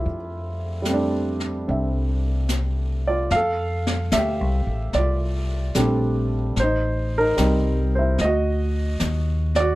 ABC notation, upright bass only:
X:1
M:4/4
L:1/8
Q:"Swing" 1/4=74
K:F
V:1 name="Upright bass" clef=bass
F,,4 C,,4 | F,,2 (3D,, C,, A,,, C,,2 B,,,2 | A,,,2 C,,2 D,,2 _E,,2 |]